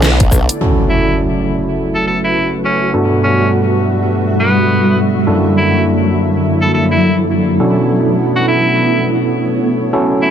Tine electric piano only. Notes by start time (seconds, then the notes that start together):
0.61 C#4 E4 F#4 A4
2.94 G2 B3 D4 F#4 A4
5.27 F#2 A#3 D4 E4 A4
7.60 B2 C#4 D4 F#4 A4
9.93 C#4 E4 F#4 A4